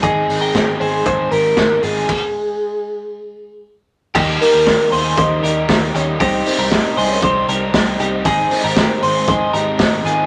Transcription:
0.02 picked electric bass G#1, overdriven electric guitar G#2 D#3 G#3 C4 D#4, clean electric guitar D#4 G#4, soft synth lead G#4, kick, closed hi-hat
0.28 picked electric bass G#1, overdriven electric guitar G#3 C4 D#4, open hi-hat
0.41 clean electric guitar A#4 G5
0.54 picked electric bass G#1, overdriven electric guitar G#2 D#3 G#3 C4 D#4, kick, snare, closed hi-hat
0.79 picked electric bass G#1, overdriven electric guitar G#3 C4 D#4, clean electric guitar G#4 C5, open hi-hat
1.05 picked electric bass G#1, overdriven electric guitar D#3 G#3 C4 D#4, clean electric guitar G#4 C5, soft synth lead C5, kick, closed hi-hat
1.30 picked electric bass G#1, overdriven electric guitar G#3 C4 D#4, clean electric guitar G4 A#4, soft synth lead A#4, open hi-hat
1.56 picked electric bass G#1, overdriven electric guitar G#2 D#3 G#3 C4 D#4, kick, snare, closed hi-hat
1.81 picked electric bass G#1, overdriven electric guitar G#3 C4 D#4, clean electric guitar F4 G#4, soft synth lead G#4, open hi-hat
2.09 kick, crash
4.15 picked electric bass D#2, overdriven electric guitar D#3 G3 A#3 D#4, string machine D#3 D#4 G4 A#4, clean electric guitar D#4 G4, kick, crash
4.40 overdriven electric guitar G3 A#3 D#4, soft synth lead A#4, hi-hat pedal, open hi-hat
4.53 picked electric bass D#2, clean electric guitar G4 A#4
4.66 overdriven electric guitar D#3 G3 A#3 D#4, kick, snare, hi-hat pedal, open hi-hat
4.92 picked electric bass D#2, overdriven electric guitar G3 A#3 D#4, clean electric guitar G#4 C5, hi-hat pedal, open hi-hat
5.16 picked electric bass D#2, overdriven electric guitar D#3 G3 A#3 D#4, clean electric guitar G4 C5, soft synth lead D#5, kick, hi-hat pedal, open hi-hat
5.42 picked electric bass D#2, overdriven electric guitar G3 A#3 D#4, clean electric guitar G4 A#4, hi-hat pedal, open hi-hat
5.68 picked electric bass D#2, overdriven electric guitar D#3 G3 A#3 D#4, kick, snare, hi-hat pedal, open hi-hat
5.93 picked electric bass D#2, overdriven electric guitar G3 A#3 D#4, clean electric guitar D#4 G4, soft synth lead C#5, hi-hat pedal, open hi-hat
6.20 picked electric bass C2, overdriven electric guitar C3 G3 C4 D#4, string machine C3 C4, clean electric guitar D#4 G4, soft synth lead C5, kick, hi-hat pedal, open hi-hat
6.45 overdriven electric guitar G3 C4 D#4, soft synth lead C5, hi-hat pedal, open hi-hat
6.58 picked electric bass C2, clean electric guitar G4 A#4
6.71 overdriven electric guitar C3 G3 C4 D#4, soft synth lead D#5, kick, snare, hi-hat pedal, open hi-hat
6.96 picked electric bass C2, overdriven electric guitar G3 C4 D#4, clean electric guitar G#4 C5, hi-hat pedal, open hi-hat
7.11 soft synth lead C#5
7.22 picked electric bass C2, overdriven electric guitar C3 G3 C4 D#4, clean electric guitar G4 C5, soft synth lead C5, kick, hi-hat pedal, open hi-hat
7.47 picked electric bass C2, overdriven electric guitar G3 C4 D#4, clean electric guitar G4 A#4, hi-hat pedal, open hi-hat
7.73 picked electric bass C2, overdriven electric guitar C3 G3 C4 D#4, kick, snare, hi-hat pedal, open hi-hat
7.98 picked electric bass C2, overdriven electric guitar G3 C4 D#4, clean electric guitar D#4 G4, hi-hat pedal, open hi-hat
8.24 picked electric bass G#1, overdriven electric guitar G#2 D#3 G#3 C4 D#4, string machine G#3, clean electric guitar D#4 G#4, kick, hi-hat pedal, open hi-hat
8.50 overdriven electric guitar G#3 C4 D#4, soft synth lead C5, hi-hat pedal, open hi-hat
8.64 picked electric bass G#1, clean electric guitar G4 A#4
8.76 overdriven electric guitar G#2 D#3 G#3 C4 D#4, kick, snare, hi-hat pedal, open hi-hat
9.01 picked electric bass G#1, overdriven electric guitar G#3 C4 D#4, clean electric guitar G#4 C5, hi-hat pedal, open hi-hat
9.27 picked electric bass G#1, overdriven electric guitar D#3 G#3 C4 D#4, clean electric guitar G#4 C5, soft synth lead D#5, kick, hi-hat pedal, open hi-hat
9.53 picked electric bass G#1, overdriven electric guitar G#3 C4 D#4, clean electric guitar G4 A#4, hi-hat pedal, open hi-hat
9.79 picked electric bass G#1, overdriven electric guitar G#2 D#3 G#3 C4 D#4, soft synth lead D#5, kick, snare, hi-hat pedal, open hi-hat
10.04 picked electric bass G#1, overdriven electric guitar G#3 C4 D#4, clean electric guitar F4 G#4, hi-hat pedal, open hi-hat

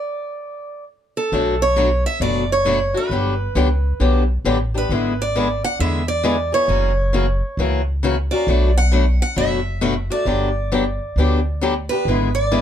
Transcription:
Already playing: steel-string acoustic guitar D5
1.17 steel-string acoustic guitar A4
1.32 upright bass B1, steel-string acoustic guitar B2 F#3 A3 D4 F#4
1.62 steel-string acoustic guitar C#5
1.76 steel-string acoustic guitar B2 F#3 A3 D4 F#4
2.06 steel-string acoustic guitar E5
2.20 upright bass F#1, steel-string acoustic guitar B2 F#3 A3 D4 F#4 D5
2.52 steel-string acoustic guitar C#5
2.65 steel-string acoustic guitar B2 F#3 A3 D4 F#4
2.94 steel-string acoustic guitar A3 D4 F#4 B4
3.10 upright bass G1, steel-string acoustic guitar D3 F#3 B3 D4 G4
3.55 upright bass C#2, steel-string acoustic guitar D3 F#3 B3 D4 G4
4.00 upright bass B1, steel-string acoustic guitar D3 F#3 B3 D4 G4
4.45 upright bass A1, steel-string acoustic guitar D3 F#3 B3 D4 G4
4.74 steel-string acoustic guitar B3 D4 G4 B4
4.89 upright bass G#1, steel-string acoustic guitar D3 G#3 B3 E4 G#4
5.22 steel-string acoustic guitar D5
5.35 steel-string acoustic guitar D3 G#3 B3 E4 G#4
5.64 steel-string acoustic guitar F#5
5.80 upright bass E2, steel-string acoustic guitar D3 G#3 B3 E4 G#4 E5
6.08 steel-string acoustic guitar D5
6.23 steel-string acoustic guitar D3 G#3 B3 E4 G#4
6.52 steel-string acoustic guitar B3 E4 G#4 C#5
6.68 upright bass F#1, steel-string acoustic guitar C#3 E3 A#3 C#4 F#4
7.13 steel-string acoustic guitar C#3 E3 A#3 C#4 F#4
7.57 upright bass C#2, steel-string acoustic guitar C#3 E3 A#3 C#4 F#4
8.03 steel-string acoustic guitar C#3 E3 A#3 C#4 F#4
8.31 steel-string acoustic guitar A#3 C#4 F#4 D5
8.47 upright bass B1, steel-string acoustic guitar B2 F#3 A3 D4 F#4
8.78 steel-string acoustic guitar F#5
8.92 steel-string acoustic guitar B2 F#3 A3 D4 F#4
9.22 steel-string acoustic guitar F#5
9.36 upright bass F#1, steel-string acoustic guitar B2 F#3 A3 D4 F#4 E5
9.81 steel-string acoustic guitar B2 F#3 A3 D4 F#4
10.10 steel-string acoustic guitar A3 D4 F#4 D5
10.25 upright bass G1, steel-string acoustic guitar D3 F#3 B3 D4 G4
10.72 steel-string acoustic guitar D3 F#3 B3 D4 G4
11.16 upright bass D2, steel-string acoustic guitar D3 F#3 B3 D4 G4
11.61 steel-string acoustic guitar D3 F#3 B3 D4 G4
11.89 steel-string acoustic guitar D4 G4 B4
11.93 steel-string acoustic guitar B3
12.05 upright bass G#1, steel-string acoustic guitar D3 G#3 B3 E4
12.09 steel-string acoustic guitar G#4
12.35 steel-string acoustic guitar D5
12.51 steel-string acoustic guitar D3 G#3 B3 E4 G#4

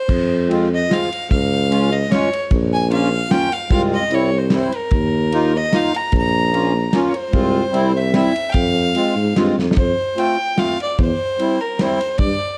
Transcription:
Already playing: fiddle C5
0.09 tuba F2, kick, crash
0.48 accordion G#3 C4 F4, ride
0.74 fiddle D#5
0.88 accordion G#3 C4 F4, snare, ride
0.93 fiddle F5
1.12 ride
1.30 tuba C#2, fiddle F5, kick, ride
1.70 accordion G#3 C#4 F4, ride
1.92 fiddle D#5
2.08 accordion G#3 C#4 F4, fiddle C#5, snare, ride
2.33 ride
2.51 tuba A#1, kick, ride
2.73 fiddle G#5
2.88 accordion A#3 C#4 F4, fiddle F5, ride
3.29 accordion A#3 C#4 F4, fiddle G5, snare, ride
3.52 fiddle F5, ride
3.69 tuba C2, accordion G#3 C4 F4, fiddle F5, kick, ride
3.94 fiddle D#5
4.09 tuba C2, accordion G3 C4 E4, ride
4.14 fiddle C#5
4.38 fiddle C5
4.50 accordion G3 C4 E4, snare, ride
4.56 fiddle C5
4.72 fiddle A#4, ride
4.91 tuba D#2, kick, ride
5.32 accordion A#3 D#4 F4, ride
5.56 fiddle D#5
5.71 accordion A#3 D#4 F4, snare, ride
5.76 fiddle F5
5.94 fiddle A#5, ride
6.12 tuba A#1, kick, ride
6.17 fiddle A#5
6.52 accordion A#3 C#4 F4, ride
6.92 accordion A#3 C#4 F4, snare, ride
7.08 fiddle C#5
7.14 fiddle C5, ride
7.31 tuba C2, accordion G#3 C4 F4, kick, ride
7.71 tuba C2, accordion G3 C4 E4, ride
7.97 fiddle E5
8.12 accordion G3 C4 E4, fiddle E5, snare, ride
8.36 ride
8.49 fiddle F5 G5
8.54 tuba F2, kick, ride
8.94 accordion G#3 C4 F4, ride
9.16 tuba G#2
9.35 tuba G2, accordion G#3 C4 F4, snare, ride
9.57 tuba F2, snare
9.71 snare
9.76 tuba F2, fiddle C5, kick, ride
10.16 accordion A3 C4 F4, fiddle G5, ride
10.57 accordion A3 C4 F4, fiddle F5, snare, ride
10.80 fiddle D5, ride
10.99 tuba E2, fiddle C5, kick, ride
11.39 accordion G3 C4 E4, ride
11.60 fiddle A#4
11.79 accordion G3 C4 E4, fiddle C5, snare, ride
12.01 ride
12.18 tuba G2, fiddle D5, kick, ride

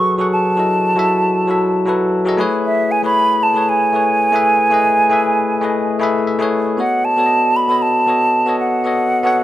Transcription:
Already playing: tine electric piano F#3 F#4 G#4 A4 B4 E5 F#5, flute C#6
0.18 tine electric piano F#3 F#4 G#4 A4 F#5
0.33 flute A5
0.56 tine electric piano F#3 E4 F#4 A4 D#5
0.95 tine electric piano F#3 E4 F#4 A4 E5
1.47 tine electric piano F#3 E4 F#4 A4 E5
1.86 tine electric piano F#3 E4 F#4 A4 B4
2.25 tine electric piano F#3 F#4 G#4 A4 D#5
2.37 tine electric piano A3 E4 G#4 B4 C#5
2.66 flute E5
2.91 flute G#5
3.03 tine electric piano A3 E4 G#4 B4 C#5, flute B5
3.43 flute A5
3.54 tine electric piano A3 E4 G#4 B4 C#5
3.69 flute G#5
3.93 tine electric piano A3 E4 G#4 B4 C#5
4.32 tine electric piano A3 E4 G#4 B4 E5
4.70 tine electric piano A3 E4 G#4 B4 D#5
5.10 tine electric piano A3 E4 G#4 B4 E5
5.61 tine electric piano A3 E4 G#4 B4 D#5
6.00 tine electric piano A3 E4 G#4 B4 E5 B5
6.27 tine electric piano E5
6.39 tine electric piano A3 E4 G#4 B4 C#5
6.77 tine electric piano B3 F#4 A4 C#5 D#5, flute F#5
7.05 flute A5
7.17 tine electric piano B3 F#4 A4 C#5 D5
7.26 tine electric piano D#5
7.56 flute B5
7.68 tine electric piano B3 F#4 A4 C#5 D#5
7.82 flute A5
8.06 tine electric piano B3 F#4 A4 C#5 D#5
8.46 tine electric piano B3 F#4 A4 C#5 D#5
8.60 flute F#5
8.84 tine electric piano B3 F#4 A4 C#5 D#5
9.23 tine electric piano B3 F#4 A4 C#5 F#5

